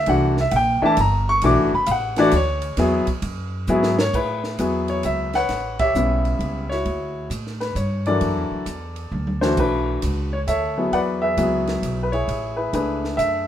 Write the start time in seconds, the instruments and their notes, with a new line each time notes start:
0.06 upright bass C2, grand piano E3 A3 D4 F#4 F#5, ride
0.37 grand piano E5, snare
0.51 upright bass A#1, grand piano F#5, ride
0.56 grand piano G5
0.82 grand piano E3 A3 D4 E4 A5, muted upright bass stroke
0.97 upright bass G1, grand piano A#5, hi-hat pedal, ride
1.29 grand piano C#6
1.42 upright bass B1, grand piano E3 A3 D4 F#4 D6, ride
1.58 upright bass A1
1.73 upright bass F#1, grand piano B5
1.86 upright bass A1, grand piano F5, hi-hat pedal, ride
1.91 grand piano F#5
2.16 grand piano E3 A3 D4 F#4 D5, snare, ride
2.31 upright bass D2, hi-hat pedal, ride
2.36 grand piano C#5
2.62 ride
2.77 upright bass E2, grand piano F#3 B3 E4 G#4, snare, ride
3.07 muted upright bass stroke, kick, ride
3.22 upright bass F#2, ride
3.67 upright bass G#2, grand piano F#3 B3 E4 G#4, hi-hat pedal
3.83 snare
3.99 grand piano C#5, snare
4.13 upright bass A2, grand piano E4 G#4 B4, kick, crash
4.44 snare
4.59 upright bass E2, grand piano F#3 B3 E4 G#4, hi-hat pedal, ride
4.88 grand piano C#5, ride
5.03 upright bass C#2, grand piano E5, hi-hat pedal, ride
5.33 grand piano B4 C#5 F#5, snare, ride
5.49 upright bass A1, snare, ride
5.79 grand piano G4 C#5 E5, kick, ride
5.95 upright bass B1, grand piano C#3 G3 B3 E4, hi-hat pedal
6.25 ride
6.39 upright bass C#2, ride
6.69 grand piano E4 F#4 C#5, snare
6.85 upright bass D2, ride
7.30 upright bass A2, hi-hat pedal, ride
7.47 snare
7.60 grand piano B4, snare, ride
7.75 upright bass G2, grand piano C#5, hi-hat pedal, ride
8.06 grand piano E3 F#3 D4 F#4 A4 A#4 D5, ride
8.21 upright bass F#2, ride
8.36 upright bass E2
8.51 upright bass D2
8.66 upright bass E2, hi-hat pedal, ride
8.96 ride
9.12 upright bass D2, high tom
9.27 high tom
9.41 grand piano E3 A3 D4 F#4 C5, snare
9.57 upright bass B1, grand piano D4 F#4 B4, kick, crash
10.02 upright bass C#2, hi-hat pedal, ride
10.33 grand piano C#5
10.47 upright bass D2, grand piano A4 C#5 E5, hi-hat pedal, ride
10.78 grand piano F#3 B3 E4 G#4
10.92 upright bass E2, grand piano B4 D5 F#5, ride
11.22 grand piano G#4 B4 E5
11.37 upright bass C#2, grand piano F#3 B3 E4 G#4, hi-hat pedal, ride
11.67 snare, ride
11.82 upright bass B1, hi-hat pedal, ride
12.03 grand piano B4
12.12 grand piano E4 G#4 C#5, ride
12.28 upright bass A1, ride
12.56 grand piano E4 G#4 B4
12.73 upright bass C#2, grand piano A3 D4 G#4 B4, hi-hat pedal, ride
13.04 snare
13.17 upright bass F#2, grand piano E5, hi-hat pedal, ride